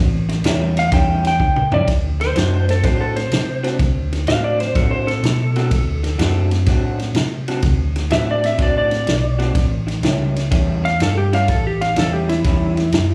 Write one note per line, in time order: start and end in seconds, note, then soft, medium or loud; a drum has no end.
0.00 0.43 A1 loud
0.29 muted clean electric guitar stroke medium
0.29 snare soft
0.29 ride medium
0.44 0.90 E2 loud
0.44 0.77 A2 medium
0.44 0.76 G3 medium
0.44 0.76 C#4 medium
0.44 0.76 E4 loud
0.44 snare loud
0.44 ride medium
0.77 0.93 F5 loud
0.77 muted clean electric guitar stroke medium
0.77 snare soft
0.77 ride medium
0.92 1.38 E2 medium
0.92 1.25 A2 medium
0.92 1.25 G3 medium
0.92 1.24 C#4 loud
0.92 1.24 E4 loud
0.92 1.25 G5 medium
0.92 kick loud
0.92 snare soft
0.92 ride medium
1.25 1.73 G5 medium
1.25 muted clean electric guitar stroke soft
1.25 snare soft
1.25 ride medium
1.40 1.86 C#2 medium
1.40 muted clean electric guitar stroke medium
1.40 kick medium
1.56 mid tom medium
1.72 1.89 A2 medium
1.72 1.87 G3 medium
1.72 1.88 C#4 medium
1.72 1.88 E4 medium
1.72 1.88 D5 loud
1.72 floor tom loud
1.88 2.34 D2 medium
1.88 muted clean electric guitar stroke soft
1.88 kick loud
1.88 snare soft
1.88 ride medium
2.20 2.67 C5 medium
2.20 muted clean electric guitar stroke soft
2.20 snare soft
2.20 ride medium
2.35 2.82 F#2 medium
2.35 2.68 D3 medium
2.35 2.67 A3 medium
2.35 2.67 C4 medium
2.35 2.67 F#4 medium
2.35 snare loud
2.35 ride medium
2.68 2.85 A4 medium
2.68 muted clean electric guitar stroke soft
2.68 snare soft
2.68 ride medium
2.83 3.30 A2 medium
2.83 3.16 D3 medium
2.83 3.16 A3 medium
2.83 3.16 C4 medium
2.83 3.15 F#4 medium
2.83 3.00 C5 medium
2.83 kick loud
2.83 snare soft
2.83 ride medium
3.01 3.16 A4 medium
3.16 3.63 C5 medium
3.16 muted clean electric guitar stroke soft
3.16 snare soft
3.16 ride medium
3.31 3.77 C3 medium
3.31 muted clean electric guitar stroke soft
3.31 snare loud
3.31 ride medium
3.63 3.78 D3 medium
3.63 3.78 A3 medium
3.63 3.79 C4 medium
3.63 3.79 F#4 medium
3.63 snare soft
3.63 ride medium
3.79 4.25 D2 medium
3.79 muted clean electric guitar stroke soft
3.79 kick loud
3.79 snare soft
3.79 ride medium
4.13 muted clean electric guitar stroke soft
4.13 snare soft
4.13 ride medium
4.27 4.73 A2 medium
4.27 4.60 D3 medium
4.27 4.59 A3 medium
4.27 4.59 C4 medium
4.27 4.59 F#4 loud
4.27 4.43 F5 medium
4.27 snare loud
4.27 ride medium
4.44 4.59 D5 medium
4.60 4.76 C5 medium
4.60 muted clean electric guitar stroke medium
4.60 snare soft
4.60 ride medium
4.75 5.21 A2 medium
4.75 5.08 D3 medium
4.75 5.07 A3 medium
4.75 5.07 C4 medium
4.75 5.06 F#4 medium
4.75 4.91 A4 medium
4.75 kick loud
4.75 snare soft
4.75 ride medium
4.91 5.07 C5 medium
5.07 6.47 A4 medium
5.07 muted clean electric guitar stroke medium
5.07 snare soft
5.07 ride medium
5.22 5.69 B2 medium
5.22 muted clean electric guitar stroke medium
5.22 snare loud
5.22 ride medium
5.56 5.70 D3 medium
5.56 5.70 A3 medium
5.56 5.71 C4 medium
5.56 5.70 F#4 medium
5.56 snare soft
5.56 ride medium
5.71 6.17 D2 medium
5.71 muted clean electric guitar stroke soft
5.71 kick loud
5.71 snare soft
5.71 ride medium
6.03 muted clean electric guitar stroke soft
6.03 snare soft
6.03 ride medium
6.18 6.65 F#2 medium
6.18 6.51 D3 medium
6.18 6.51 A3 medium
6.18 6.51 C4 medium
6.18 6.51 F#4 loud
6.18 snare loud
6.18 ride medium
6.51 muted clean electric guitar stroke medium
6.51 snare soft
6.51 ride medium
6.66 7.13 A2 medium
6.66 7.00 D3 medium
6.66 7.00 A3 medium
6.66 7.00 C4 medium
6.66 6.99 F#4 medium
6.66 kick loud
6.66 snare soft
6.66 ride medium
6.99 muted clean electric guitar stroke medium
6.99 snare soft
6.99 ride medium
7.14 7.61 C3 medium
7.14 muted clean electric guitar stroke soft
7.14 snare loud
7.14 ride medium
7.48 7.62 D3 medium
7.48 7.62 A3 medium
7.48 7.62 C4 medium
7.48 7.63 F#4 medium
7.48 snare soft
7.48 ride medium
7.62 8.09 D2 medium
7.62 muted clean electric guitar stroke soft
7.62 kick loud
7.62 snare soft
7.62 ride medium
7.96 muted clean electric guitar stroke soft
7.96 snare soft
7.96 ride medium
8.10 8.57 A2 medium
8.10 8.44 D3 medium
8.10 8.43 A3 medium
8.10 8.43 C4 medium
8.10 8.43 F#4 loud
8.10 8.27 E5 medium
8.10 snare loud
8.10 ride medium
8.31 8.45 D5 medium
8.44 8.60 E5 medium
8.44 muted clean electric guitar stroke soft
8.44 snare soft
8.44 ride medium
8.58 9.05 A2 medium
8.58 8.91 D3 medium
8.58 8.91 A3 medium
8.58 8.91 C4 loud
8.58 8.90 F#4 loud
8.58 kick loud
8.58 snare soft
8.58 ride medium
8.62 8.77 D5 medium
8.78 9.70 D5 medium
8.91 muted clean electric guitar stroke soft
8.91 snare soft
8.91 ride medium
9.07 9.54 B1 medium
9.07 muted clean electric guitar stroke soft
9.07 snare loud
9.07 ride medium
9.39 9.56 D3 medium
9.39 9.55 A3 medium
9.39 9.55 C4 medium
9.39 9.55 F#4 medium
9.39 snare soft
9.39 ride medium
9.55 10.01 A1 medium
9.55 muted clean electric guitar stroke soft
9.55 kick loud
9.55 snare soft
9.55 ride medium
9.87 muted clean electric guitar stroke soft
9.87 snare soft
9.87 ride medium
10.02 10.49 C#2 medium
10.02 10.36 A2 medium
10.02 10.35 G3 medium
10.02 10.35 C#4 medium
10.02 10.35 E4 medium
10.02 snare loud
10.02 ride medium
10.36 muted clean electric guitar stroke medium
10.36 snare soft
10.36 ride medium
10.51 10.98 E2 medium
10.51 10.84 A2 medium
10.51 10.84 G3 medium
10.51 10.83 C#4 medium
10.51 10.83 E4 medium
10.51 kick loud
10.51 snare soft
10.51 ride medium
10.84 11.00 F5 loud
10.84 muted clean electric guitar stroke medium
10.84 snare soft
10.84 ride medium
11.00 11.46 G2 medium
11.00 11.17 A4 medium
11.00 muted clean electric guitar stroke soft
11.00 snare loud
11.00 ride medium
11.18 11.32 G4 medium
11.33 11.49 A2 medium
11.33 11.49 G3 medium
11.33 11.49 C#4 medium
11.33 11.48 E4 medium
11.33 11.49 F5 medium
11.33 snare soft
11.33 ride medium
11.48 11.95 A1 medium
11.48 11.64 A4 medium
11.48 muted clean electric guitar stroke soft
11.48 kick loud
11.48 snare soft
11.48 ride medium
11.67 11.81 G4 medium
11.81 11.96 F5 medium
11.81 muted clean electric guitar stroke soft
11.81 snare soft
11.81 ride medium
11.96 12.42 E2 medium
11.96 12.29 A2 medium
11.96 12.29 G3 loud
11.96 12.29 C#4 medium
11.96 12.29 E4 medium
11.96 12.13 A4 medium
11.96 snare loud
11.96 ride medium
12.13 12.28 G4 medium
12.29 13.14 E4 medium
12.29 muted clean electric guitar stroke soft
12.29 snare soft
12.29 ride medium
12.44 12.90 E2 medium
12.44 12.77 A2 medium
12.44 12.78 G3 medium
12.44 12.78 C#4 medium
12.44 12.77 E4 medium
12.44 kick loud
12.44 snare soft
12.44 ride medium
12.77 muted clean electric guitar stroke medium
12.77 snare soft
12.77 ride medium
12.92 13.14 F#2 medium
12.92 muted clean electric guitar stroke soft
12.92 snare loud
12.92 ride medium